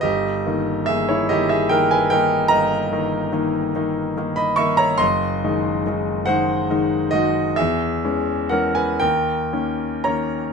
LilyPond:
<<
  \new Staff \with { instrumentName = "Grand piano" } { \time 12/8 \key dis \phrygian \tempo 4. = 47 <g' dis''>4 <gis' e''>16 <e' cis''>16 <g' dis''>16 <gis' e''>16 <ais' g''>16 <b' gis''>16 <ais' g''>8 <dis'' ais''>2~ <dis'' ais''>16 <dis'' b''>16 <e'' cis'''>16 <cis'' ais''>16 | <dis'' bis''>4. <bis' fis''>4 <fis' dis''>8 <gis' e''>4 <ais' fis''>16 <b' gis''>16 <ais' g''>4 <cis'' ais''>8 | }
  \new Staff \with { instrumentName = "Grand piano" } { \time 12/8 \key dis \phrygian g,,8 <dis ais dis'>8 <dis ais dis'>8 <dis ais dis'>8 <dis ais dis'>8 <dis ais dis'>8 g,,8 <dis ais dis'>8 <dis ais dis'>8 <dis ais dis'>8 <dis ais dis'>8 <dis ais dis'>8 | fis,,8 <dis gis dis'>8 <dis gis dis'>8 <dis gis dis'>8 <dis gis dis'>8 <dis gis dis'>8 e,8 <e gis cis'>8 <e gis cis'>8 dis,8 <dis ais cis'>8 <dis ais cis'>8 | }
>>